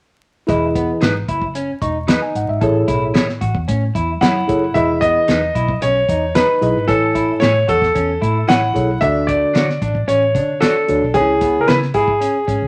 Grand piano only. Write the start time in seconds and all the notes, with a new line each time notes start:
4.21 F#5
4.74 E5
5.01 D#5
5.82 C#5
6.35 B4
6.88 A4
7.40 C#5
7.69 A4
8.49 F#5
9.01 E5
9.27 D5
10.08 C#5
10.61 A4
11.14 G#4
11.61 A#4
11.68 B4
11.94 G#4